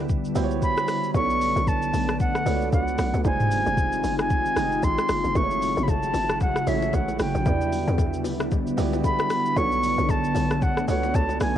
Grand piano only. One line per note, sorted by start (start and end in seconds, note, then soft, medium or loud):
0.00 0.35 B3 medium
0.00 1.16 D4 medium
0.00 0.36 E4 medium
0.00 0.37 G4 medium
0.00 1.16 D5 medium
0.35 1.00 B3 medium
0.35 1.00 E4 medium
0.35 1.01 F#4 medium
0.35 1.01 G4 medium
0.35 0.44 C5 medium
0.43 1.04 C#5 loud
1.14 1.99 B3 medium
1.14 1.22 C#4 medium
1.14 2.00 F#4 medium
1.14 2.00 A4 medium
1.14 2.00 C#5 medium
1.21 2.03 D4 medium
2.46 3.11 B3 medium
2.46 3.11 D4 medium
2.46 3.11 F#4 medium
2.46 3.11 A4 medium
2.46 2.54 C#5 medium
2.54 3.15 D5 medium
3.25 4.11 G3 medium
3.25 4.10 G#3 medium
3.25 4.10 D#4 medium
3.25 4.10 F4 medium
3.25 4.11 C5 medium
4.56 5.21 G#3 medium
4.56 5.21 D#4 medium
4.56 5.22 F4 medium
4.56 5.22 G4 medium
4.56 5.22 D#5 medium
5.35 6.21 G#3 medium
5.35 6.20 A3 medium
5.35 6.21 E4 medium
5.35 6.21 F#4 medium
5.35 5.44 B4 medium
5.43 6.24 C#5 medium
6.66 6.74 G#3 medium
6.66 7.32 E4 medium
6.66 7.32 F#4 medium
6.66 7.32 G#4 medium
6.66 7.33 C#5 medium
6.73 7.35 A3 medium
7.46 8.31 B3 medium
7.46 8.31 D4 medium
7.46 8.31 E4 medium
7.46 8.32 G4 medium
7.46 8.32 D5 medium
8.77 9.42 B3 medium
8.77 9.42 E4 medium
8.77 9.43 F#4 medium
8.77 9.43 G4 medium
8.77 9.43 D5 loud
9.56 10.41 B3 medium
9.56 10.42 D4 medium
9.56 10.42 F#4 medium
9.56 10.42 A4 medium
9.56 10.42 C#5 medium
10.88 11.53 B3 medium
10.88 11.53 D4 medium
10.88 11.53 F#4 medium
10.88 11.53 A4 medium
10.88 11.54 C#5 medium